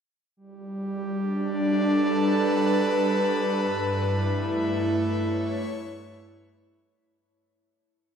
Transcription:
0, 0, Header, 1, 2, 480
1, 0, Start_track
1, 0, Tempo, 1102941
1, 165, Time_signature, 3, 2, 24, 8
1, 3549, End_track
2, 0, Start_track
2, 0, Title_t, "Analog synth pad"
2, 0, Program_c, 0, 89
2, 160, Note_on_c, 0, 55, 65
2, 501, Note_on_c, 0, 62, 68
2, 718, Note_on_c, 0, 69, 72
2, 810, Note_on_c, 0, 71, 75
2, 1581, Note_on_c, 0, 43, 68
2, 1594, Note_off_c, 0, 62, 0
2, 1595, Note_off_c, 0, 55, 0
2, 1761, Note_on_c, 0, 64, 77
2, 1873, Note_on_c, 0, 57, 78
2, 2169, Note_off_c, 0, 69, 0
2, 2248, Note_on_c, 0, 73, 83
2, 3028, Note_off_c, 0, 43, 0
2, 3032, Note_off_c, 0, 64, 0
2, 3033, Note_off_c, 0, 71, 0
2, 3035, Note_off_c, 0, 57, 0
2, 3039, Note_off_c, 0, 73, 0
2, 3549, End_track
0, 0, End_of_file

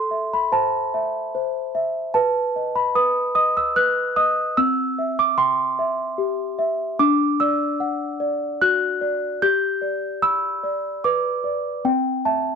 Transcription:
0, 0, Header, 1, 2, 480
1, 0, Start_track
1, 0, Tempo, 808625
1, 1275, Time_signature, 3, 2, 24, 8
1, 7451, End_track
2, 0, Start_track
2, 0, Title_t, "Celesta"
2, 0, Program_c, 0, 8
2, 0, Control_c, 0, 64, 127
2, 0, Note_on_c, 0, 69, 65
2, 0, Note_on_c, 0, 84, 98
2, 65, Note_on_c, 0, 76, 44
2, 190, Note_off_c, 0, 84, 0
2, 199, Note_on_c, 0, 83, 78
2, 309, Note_on_c, 0, 72, 53
2, 311, Note_on_c, 0, 81, 90
2, 316, Note_off_c, 0, 83, 0
2, 453, Note_off_c, 0, 76, 0
2, 558, Note_on_c, 0, 76, 52
2, 695, Note_off_c, 0, 72, 0
2, 800, Note_on_c, 0, 72, 54
2, 941, Note_off_c, 0, 76, 0
2, 1038, Note_on_c, 0, 76, 55
2, 1182, Note_off_c, 0, 72, 0
2, 1249, Note_off_c, 0, 69, 0
2, 1264, Note_off_c, 0, 81, 0
2, 1271, Note_on_c, 0, 81, 88
2, 1275, Note_on_c, 0, 71, 69
2, 1277, Note_off_c, 0, 76, 0
2, 1285, Control_c, 0, 64, 0
2, 1370, Control_c, 0, 64, 127
2, 1519, Note_on_c, 0, 75, 48
2, 1633, Note_off_c, 0, 81, 0
2, 1635, Note_on_c, 0, 83, 76
2, 1746, Note_off_c, 0, 71, 0
2, 1753, Note_on_c, 0, 71, 52
2, 1754, Note_on_c, 0, 87, 94
2, 1756, Note_off_c, 0, 83, 0
2, 1902, Note_off_c, 0, 75, 0
2, 1982, Note_off_c, 0, 87, 0
2, 1989, Note_on_c, 0, 87, 92
2, 1990, Note_on_c, 0, 75, 51
2, 2113, Note_off_c, 0, 87, 0
2, 2118, Note_on_c, 0, 88, 93
2, 2139, Note_off_c, 0, 71, 0
2, 2233, Note_on_c, 0, 71, 53
2, 2233, Note_on_c, 0, 90, 100
2, 2238, Note_off_c, 0, 88, 0
2, 2378, Note_off_c, 0, 75, 0
2, 2471, Note_on_c, 0, 87, 97
2, 2473, Note_on_c, 0, 75, 58
2, 2475, Note_off_c, 0, 90, 0
2, 2619, Note_off_c, 0, 71, 0
2, 2714, Note_off_c, 0, 87, 0
2, 2715, Note_off_c, 0, 75, 0
2, 2715, Note_on_c, 0, 88, 103
2, 2716, Note_on_c, 0, 60, 71
2, 2725, Control_c, 0, 64, 0
2, 2825, Control_c, 0, 64, 127
2, 2959, Note_on_c, 0, 76, 53
2, 3075, Note_off_c, 0, 88, 0
2, 3081, Note_on_c, 0, 86, 95
2, 3192, Note_on_c, 0, 84, 103
2, 3193, Note_on_c, 0, 79, 54
2, 3198, Note_off_c, 0, 86, 0
2, 3341, Note_off_c, 0, 76, 0
2, 3436, Note_on_c, 0, 76, 57
2, 3578, Note_off_c, 0, 79, 0
2, 3669, Note_on_c, 0, 67, 59
2, 3818, Note_off_c, 0, 76, 0
2, 3909, Note_on_c, 0, 76, 63
2, 4054, Note_off_c, 0, 67, 0
2, 4129, Note_off_c, 0, 60, 0
2, 4151, Note_off_c, 0, 76, 0
2, 4151, Note_off_c, 0, 84, 0
2, 4151, Note_on_c, 0, 62, 70
2, 4152, Note_on_c, 0, 86, 108
2, 4161, Control_c, 0, 64, 0
2, 4276, Control_c, 0, 64, 127
2, 4392, Note_off_c, 0, 86, 0
2, 4393, Note_on_c, 0, 88, 107
2, 4395, Note_on_c, 0, 74, 52
2, 4631, Note_on_c, 0, 78, 64
2, 4777, Note_off_c, 0, 74, 0
2, 4868, Note_on_c, 0, 74, 57
2, 5015, Note_off_c, 0, 78, 0
2, 5111, Note_off_c, 0, 88, 0
2, 5114, Note_on_c, 0, 90, 108
2, 5115, Note_on_c, 0, 66, 60
2, 5253, Note_off_c, 0, 74, 0
2, 5350, Note_on_c, 0, 74, 58
2, 5497, Note_off_c, 0, 66, 0
2, 5566, Note_off_c, 0, 62, 0
2, 5590, Note_off_c, 0, 74, 0
2, 5592, Note_off_c, 0, 90, 0
2, 5593, Note_on_c, 0, 91, 111
2, 5595, Note_on_c, 0, 67, 70
2, 5601, Control_c, 0, 64, 0
2, 5705, Control_c, 0, 64, 127
2, 5826, Note_on_c, 0, 74, 47
2, 6069, Note_on_c, 0, 88, 111
2, 6070, Note_on_c, 0, 83, 59
2, 6072, Note_off_c, 0, 91, 0
2, 6212, Note_off_c, 0, 74, 0
2, 6312, Note_on_c, 0, 74, 53
2, 6453, Note_off_c, 0, 83, 0
2, 6548, Note_off_c, 0, 88, 0
2, 6555, Note_on_c, 0, 86, 92
2, 6557, Note_on_c, 0, 71, 55
2, 6694, Note_off_c, 0, 74, 0
2, 6791, Note_on_c, 0, 74, 51
2, 6936, Note_off_c, 0, 71, 0
2, 7007, Note_off_c, 0, 67, 0
2, 7030, Note_off_c, 0, 74, 0
2, 7032, Note_off_c, 0, 86, 0
2, 7032, Note_on_c, 0, 60, 69
2, 7034, Note_on_c, 0, 79, 89
2, 7041, Control_c, 0, 64, 0
2, 7155, Control_c, 0, 64, 127
2, 7271, Note_off_c, 0, 79, 0
2, 7273, Note_on_c, 0, 76, 47
2, 7274, Note_on_c, 0, 81, 79
2, 7451, Note_off_c, 0, 60, 0
2, 7451, Note_off_c, 0, 76, 0
2, 7451, Note_off_c, 0, 81, 0
2, 7451, End_track
0, 0, End_of_file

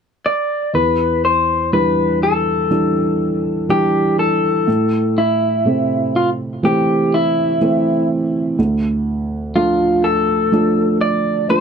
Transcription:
0, 0, Header, 1, 3, 480
1, 0, Start_track
1, 0, Tempo, 983607
1, 358, Time_signature, 4, 2, 24, 8
1, 3240, Tempo, 970874
1, 5694, End_track
2, 0, Start_track
2, 0, Title_t, "Clean electric guitar"
2, 0, Program_c, 0, 27
2, 126, Note_on_c, 0, 74, 60
2, 363, Note_off_c, 0, 74, 0
2, 365, Note_on_c, 0, 71, 53
2, 607, Note_off_c, 0, 71, 0
2, 609, Note_on_c, 0, 72, 46
2, 844, Note_off_c, 0, 72, 0
2, 846, Note_on_c, 0, 71, 55
2, 1067, Note_off_c, 0, 71, 0
2, 1089, Note_on_c, 0, 69, 51
2, 1806, Note_off_c, 0, 69, 0
2, 1808, Note_on_c, 0, 67, 62
2, 2044, Note_off_c, 0, 67, 0
2, 2046, Note_on_c, 0, 69, 52
2, 2528, Note_on_c, 0, 64, 45
2, 2536, Note_off_c, 0, 69, 0
2, 3005, Note_off_c, 0, 64, 0
2, 3007, Note_on_c, 0, 65, 45
2, 3070, Note_off_c, 0, 65, 0
2, 3245, Note_on_c, 0, 67, 46
2, 3489, Note_on_c, 0, 64, 43
2, 3490, Note_off_c, 0, 67, 0
2, 3945, Note_off_c, 0, 64, 0
2, 4682, Note_on_c, 0, 65, 52
2, 4922, Note_on_c, 0, 69, 64
2, 4927, Note_off_c, 0, 65, 0
2, 5379, Note_off_c, 0, 69, 0
2, 5403, Note_on_c, 0, 74, 62
2, 5641, Note_off_c, 0, 74, 0
2, 5643, Note_on_c, 0, 72, 74
2, 5694, Note_off_c, 0, 72, 0
2, 5694, End_track
3, 0, Start_track
3, 0, Title_t, "Felt piano"
3, 0, Program_c, 1, 0
3, 359, Note_on_c, 1, 40, 34
3, 456, Control_c, 1, 64, 127
3, 843, Note_on_c, 1, 52, 26
3, 843, Note_on_c, 1, 55, 24
3, 846, Note_on_c, 1, 62, 28
3, 1309, Note_off_c, 1, 52, 0
3, 1309, Note_off_c, 1, 55, 0
3, 1310, Note_off_c, 1, 62, 0
3, 1320, Note_on_c, 1, 52, 27
3, 1321, Note_on_c, 1, 55, 23
3, 1324, Note_on_c, 1, 62, 30
3, 1787, Note_off_c, 1, 52, 0
3, 1787, Note_off_c, 1, 55, 0
3, 1788, Note_off_c, 1, 62, 0
3, 1801, Note_on_c, 1, 52, 32
3, 1802, Note_on_c, 1, 55, 28
3, 1804, Note_on_c, 1, 62, 34
3, 2261, Note_off_c, 1, 40, 0
3, 2265, Note_off_c, 1, 52, 0
3, 2266, Note_off_c, 1, 55, 0
3, 2267, Note_off_c, 1, 62, 0
3, 2279, Note_on_c, 1, 45, 38
3, 2286, Control_c, 1, 64, 0
3, 2373, Control_c, 1, 64, 127
3, 2758, Note_on_c, 1, 48, 29
3, 2760, Note_on_c, 1, 57, 24
3, 2763, Note_on_c, 1, 60, 30
3, 3223, Note_off_c, 1, 48, 0
3, 3224, Note_off_c, 1, 57, 0
3, 3225, Note_off_c, 1, 60, 0
3, 3234, Note_on_c, 1, 52, 31
3, 3236, Note_on_c, 1, 57, 26
3, 3239, Note_on_c, 1, 60, 35
3, 3704, Note_off_c, 1, 52, 0
3, 3705, Note_off_c, 1, 57, 0
3, 3706, Note_off_c, 1, 60, 0
3, 3721, Note_on_c, 1, 52, 36
3, 3724, Note_on_c, 1, 57, 31
3, 3725, Note_on_c, 1, 60, 35
3, 4179, Note_off_c, 1, 45, 0
3, 4185, Note_off_c, 1, 52, 0
3, 4186, Note_off_c, 1, 57, 0
3, 4187, Note_off_c, 1, 60, 0
3, 4201, Note_on_c, 1, 38, 41
3, 4205, Control_c, 1, 64, 0
3, 4286, Control_c, 1, 64, 127
3, 4680, Note_on_c, 1, 53, 28
3, 4681, Note_on_c, 1, 57, 29
3, 4685, Note_on_c, 1, 62, 32
3, 5144, Note_off_c, 1, 53, 0
3, 5144, Note_off_c, 1, 57, 0
3, 5146, Note_off_c, 1, 62, 0
3, 5157, Note_on_c, 1, 53, 31
3, 5158, Note_on_c, 1, 57, 29
3, 5161, Note_on_c, 1, 62, 34
3, 5622, Note_off_c, 1, 53, 0
3, 5623, Note_off_c, 1, 57, 0
3, 5624, Note_off_c, 1, 62, 0
3, 5639, Note_on_c, 1, 53, 34
3, 5642, Note_on_c, 1, 57, 34
3, 5642, Note_on_c, 1, 62, 39
3, 5694, Note_off_c, 1, 38, 0
3, 5694, Note_off_c, 1, 53, 0
3, 5694, Note_off_c, 1, 57, 0
3, 5694, Note_off_c, 1, 62, 0
3, 5694, End_track
0, 0, End_of_file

